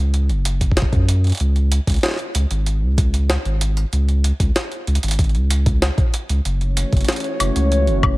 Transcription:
0.00 0.31 C#2 medium
0.14 closed hi-hat soft
0.29 0.85 F#1 medium
0.29 closed hi-hat soft
0.45 closed hi-hat medium
0.61 kick medium
0.61 closed hi-hat soft
0.72 kick medium
0.77 snare loud
0.77 closed hi-hat soft
0.82 kick medium
0.93 1.32 F#2 loud
0.93 kick loud
0.93 closed hi-hat soft
1.09 closed hi-hat medium
1.24 closed hi-hat soft
1.27 closed hi-hat soft
1.30 closed hi-hat soft
1.32 closed hi-hat soft
1.35 closed hi-hat soft
1.37 closed hi-hat soft
1.40 1.80 C#2 loud
1.40 closed hi-hat soft
1.56 closed hi-hat soft
1.72 closed hi-hat medium
1.87 1.98 C#2 medium
1.87 kick medium
1.87 closed hi-hat soft
1.90 closed hi-hat soft
1.92 closed hi-hat soft
1.94 closed hi-hat soft
1.96 closed hi-hat soft
1.99 closed hi-hat soft
2.01 snare loud
2.01 closed hi-hat soft
2.03 snare medium
2.03 closed hi-hat soft
2.08 snare medium
2.11 snare medium
2.14 snare soft
2.16 snare soft
2.16 closed hi-hat soft
2.35 2.46 C#2 medium
2.35 closed hi-hat medium
2.51 2.84 G#1 medium
2.51 closed hi-hat soft
2.66 closed hi-hat soft
2.82 3.37 C#2 medium
2.98 kick loud
2.98 closed hi-hat medium
3.14 closed hi-hat medium
3.30 snare loud
3.30 closed hi-hat soft
3.45 3.85 G#1 loud
3.45 closed hi-hat soft
3.61 closed hi-hat medium
3.77 closed hi-hat soft
3.93 4.32 C#2 loud
3.93 closed hi-hat soft
4.09 closed hi-hat soft
4.24 closed hi-hat medium
4.40 4.51 C#2 loud
4.40 kick medium
4.40 closed hi-hat medium
4.56 snare loud
4.56 closed hi-hat medium
4.72 closed hi-hat soft
4.87 4.98 C#2 loud
4.87 closed hi-hat soft
4.95 closed hi-hat medium
5.03 5.36 G#1 medium
5.03 closed hi-hat medium
5.08 closed hi-hat soft
5.11 closed hi-hat medium
5.14 closed hi-hat soft
5.19 kick medium
5.19 closed hi-hat medium
5.24 closed hi-hat soft
5.29 closed hi-hat soft
5.35 5.90 C#2 medium
5.35 closed hi-hat soft
5.50 closed hi-hat medium
5.66 kick loud
5.66 closed hi-hat medium
5.82 snare loud
5.82 closed hi-hat medium
5.98 kick loud
5.98 closed hi-hat soft
6.14 closed hi-hat medium
6.29 6.40 C#2 medium
6.29 closed hi-hat medium
6.45 6.85 F#1 loud
6.45 8.18 E3 medium
6.45 8.18 A3 medium
6.45 8.18 C#4 medium
6.45 8.18 F#4 medium
6.45 8.18 C#5 medium
6.45 closed hi-hat medium
6.61 closed hi-hat soft
6.77 closed hi-hat medium
6.93 7.04 F#1 medium
6.93 kick medium
6.93 closed hi-hat soft
6.97 closed hi-hat soft
7.01 closed hi-hat soft
7.04 closed hi-hat soft
7.09 snare loud
7.09 closed hi-hat medium
7.12 closed hi-hat soft
7.16 closed hi-hat soft
7.20 closed hi-hat soft
7.24 closed hi-hat soft
7.40 7.51 F#1 loud
7.40 closed hi-hat loud
7.40 high woodblock soft
7.56 7.89 C#2 medium
7.56 closed hi-hat medium
7.72 closed hi-hat medium
7.87 8.18 F#1 medium
7.87 closed hi-hat soft
8.03 kick loud
8.03 high woodblock medium

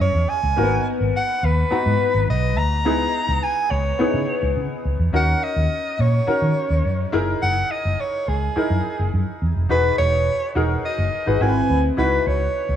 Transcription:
0.00 0.10 F#2 medium
0.00 0.43 C#4 medium
0.00 0.44 E4 medium
0.00 0.44 G#4 medium
0.00 0.58 A#4 medium
0.00 0.31 C#5 medium
0.15 0.24 E2 medium
0.29 0.88 G#5 medium
0.43 0.53 C#2 medium
0.56 0.77 G#1 medium
0.56 0.63 A#3 medium
0.56 1.58 D#4 medium
0.56 1.58 F#4 medium
0.56 1.58 A#4 medium
0.63 1.61 B3 medium
1.00 1.10 G#1 medium
1.17 1.46 F#5 medium
1.43 1.62 D#2 medium
1.43 2.30 B4 medium
1.70 2.72 B3 medium
1.70 2.72 D#4 medium
1.70 2.72 F#4 medium
1.70 2.72 A#5 medium
1.70 muted fingered electric bass stroke soft
1.86 1.96 G#2 medium
2.14 2.24 G#1 medium
2.29 2.57 B1 medium
2.29 2.59 D#5 medium
2.57 2.86 D2 medium
2.57 3.45 A#5 loud
2.85 3.05 C#2 medium
2.85 3.86 B3 medium
2.85 3.86 D#4 medium
2.85 3.86 E4 medium
2.85 3.87 G#4 medium
3.29 3.38 C#2 medium
3.43 3.73 G#5 loud
3.71 3.91 C#2 medium
3.71 4.57 C#5 medium
3.99 5.00 B3 medium
3.99 5.00 D#4 medium
3.99 5.00 E4 medium
3.99 5.01 G#4 medium
3.99 muted fingered electric bass stroke soft
4.14 4.24 C#3 medium
4.43 4.52 C#2 medium
4.57 4.66 C#3 medium
4.85 4.95 C#2 medium
4.99 5.09 E2 medium
5.13 5.33 D#2 loud
5.13 6.14 C#4 medium
5.13 6.14 D#4 medium
5.13 6.14 F#4 medium
5.13 6.15 A#4 medium
5.13 5.45 F#5 loud
5.44 6.02 D#5 loud
5.56 5.66 D#2 medium
5.99 6.19 A#2 medium
5.99 7.14 C#5 medium
6.27 7.13 C#4 medium
6.27 7.11 D#4 medium
6.27 7.13 F#4 medium
6.27 7.12 A#4 medium
6.27 muted fingered electric bass stroke soft
6.42 6.52 D#3 medium
6.70 6.80 D#2 medium
6.85 7.04 F#2 medium
7.12 7.33 F#1 medium
7.12 8.14 D#4 medium
7.12 8.14 E4 medium
7.12 8.14 G#4 medium
7.12 8.14 A#4 loud
7.42 7.62 F#1 medium
7.42 7.73 F#5 loud
7.71 8.02 D#5 medium
7.85 7.95 F#1 medium
8.01 8.30 C#5 medium
8.28 8.47 C#2 medium
8.28 9.14 G#4 medium
8.56 9.57 D#4 medium
8.56 9.57 E4 medium
8.56 9.57 G#4 medium
8.56 9.57 A#4 medium
8.56 muted fingered electric bass stroke soft
8.70 8.80 F#2 medium
8.99 9.09 F#1 medium
9.14 9.23 F#2 medium
9.42 9.51 E2 medium
9.56 9.66 F1 medium
9.69 9.90 E1 medium
9.69 10.45 D#4 medium
9.69 10.45 F#4 medium
9.69 10.46 G#4 medium
9.69 9.97 B4 medium
9.69 10.46 B4 medium
9.98 10.28 E1 medium
9.98 10.51 C#5 loud
10.55 10.75 E1 medium
10.55 11.18 D#4 medium
10.55 11.18 F#4 medium
10.55 11.19 G#4 medium
10.55 11.19 A#4 medium
10.86 11.43 D#5 medium
10.98 11.08 F#1 medium
11.26 11.37 G#1 medium
11.26 11.41 D#4 medium
11.26 11.40 F#4 medium
11.26 11.41 G#4 medium
11.26 11.41 B4 medium
11.41 11.60 G#1 medium
11.41 11.91 C4 medium
11.41 11.91 E4 medium
11.41 11.91 F#4 medium
11.41 11.48 A#4 medium
11.41 11.84 G#5 medium
11.48 11.95 B4 medium
11.70 11.89 D2 medium
11.97 12.17 C#2 loud
11.97 12.73 D#4 medium
11.97 12.73 E4 medium
11.97 12.73 F#4 medium
11.97 12.74 B4 medium
11.97 12.29 B4 medium
12.27 12.46 C#2 medium
12.27 12.76 C#5 medium
12.69 12.76 C#2 medium

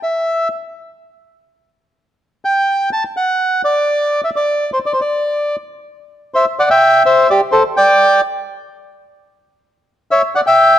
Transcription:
0.03 0.48 E5 medium
2.45 2.90 G5 medium
2.93 3.04 A5 medium
3.17 3.62 F#5 medium
3.65 4.21 D5 medium
4.24 4.30 E5 medium
4.36 4.70 D5 medium
4.73 4.79 C5 medium
4.86 4.92 D5 medium
4.93 5.00 C5 medium
5.01 5.56 D5 medium
6.34 6.45 C5 medium
6.34 6.46 E5 medium
6.59 6.69 D5 medium
6.59 6.69 F#5 medium
6.70 7.03 E5 medium
6.70 7.03 G5 loud
7.06 7.27 C5 medium
7.06 7.29 E5 medium
7.30 7.41 G4 medium
7.30 7.40 D5 medium
7.52 7.63 A4 medium
7.52 7.63 C5 medium
7.77 8.21 D5 medium
7.77 8.21 G5 loud
10.11 10.22 C#5 medium
10.11 10.22 E5 medium
10.35 10.41 D5 medium
10.35 10.40 F#5 medium
10.47 10.79 E5 medium
10.47 10.79 G5 medium

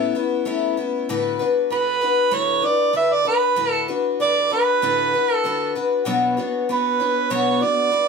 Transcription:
0.00 0.15 A2 medium
0.00 0.15 A3 medium
0.00 0.15 B3 medium
0.00 0.15 C#4 medium
0.00 0.14 E4 medium
0.15 0.46 B3 medium
0.15 0.45 C#4 soft
0.15 0.46 E4 medium
0.45 0.77 A3 medium
0.45 0.77 B3 medium
0.45 0.77 C#4 medium
0.45 0.76 E4 medium
0.77 1.09 B3 soft
0.77 1.10 C#4 soft
0.77 1.08 E4 medium
1.09 1.40 A2 medium
1.09 1.40 D3 medium
1.09 1.40 D4 medium
1.09 1.39 F#4 medium
1.09 1.38 B4 medium
1.39 1.70 D4 medium
1.39 1.71 F#4 soft
1.39 1.70 B4 medium
1.70 2.02 D3 medium
1.70 2.02 D4 medium
1.70 2.01 F#4 medium
1.70 2.35 B4 medium
1.70 2.00 B4 medium
2.01 2.30 D4 soft
2.01 2.30 F#4 soft
2.01 2.31 B4 medium
2.31 2.63 A2 medium
2.31 2.63 D3 medium
2.31 2.62 D4 medium
2.31 2.62 F#4 medium
2.31 2.61 B4 medium
2.31 2.66 C#5 medium
2.62 2.92 D4 soft
2.62 2.94 F#4 soft
2.62 2.94 B4 medium
2.62 2.96 D5 medium
2.93 3.25 D3 medium
2.93 3.26 D4 medium
2.93 3.25 F#4 medium
2.93 3.24 B4 medium
2.93 3.15 E5 medium
3.13 3.27 D5 medium
3.25 3.56 D4 soft
3.25 3.56 F#4 soft
3.25 3.56 B4 medium
3.25 3.72 B4 medium
3.56 3.88 A2 medium
3.56 3.88 D3 medium
3.56 3.88 D4 medium
3.56 3.88 F#4 medium
3.56 3.87 B4 medium
3.72 3.86 A4 medium
3.88 4.19 D4 soft
3.88 4.20 F#4 soft
3.88 4.20 B4 medium
4.20 4.51 D3 medium
4.20 4.52 D4 medium
4.20 4.50 F#4 medium
4.20 4.49 B4 medium
4.20 4.50 D5 loud
4.50 4.82 D4 soft
4.50 4.82 F#4 soft
4.50 4.82 B4 medium
4.50 5.35 B4 medium
4.82 5.13 A2 medium
4.82 5.14 D3 medium
4.82 5.14 D4 medium
4.82 5.14 F#4 medium
4.82 5.12 B4 medium
5.14 5.44 D4 soft
5.14 5.45 F#4 soft
5.14 5.45 B4 soft
5.35 5.73 A4 medium
5.44 5.75 D3 medium
5.44 5.76 D4 medium
5.44 5.75 F#4 medium
5.44 5.74 B4 medium
5.75 6.05 D4 soft
5.75 6.06 F#4 medium
5.75 6.06 B4 soft
6.05 6.37 B2 medium
6.05 6.38 F#3 medium
6.05 6.38 B3 medium
6.05 6.38 D4 medium
6.05 6.37 F#4 medium
6.05 6.36 C#5 medium
6.37 6.68 B3 soft
6.37 6.68 D4 soft
6.37 6.69 F#4 medium
6.37 6.69 C#5 medium
6.69 7.00 B3 medium
6.69 7.00 D4 medium
6.69 7.00 F#4 medium
6.69 7.33 B4 medium
6.69 6.99 C#5 medium
7.00 7.29 B3 soft
7.00 7.30 D4 soft
7.00 7.30 F#4 soft
7.00 7.31 C#5 soft
7.30 7.62 B2 medium
7.30 7.62 F#3 medium
7.30 7.62 B3 medium
7.30 7.61 D4 medium
7.30 7.60 F#4 medium
7.30 7.64 C#5 medium
7.30 7.63 C#5 medium
7.61 7.90 B3 soft
7.61 7.91 D4 soft
7.61 7.92 F#4 soft
7.61 8.08 D5 medium
7.91 8.08 B3 medium
7.91 8.08 D4 medium
7.91 8.08 F#4 medium

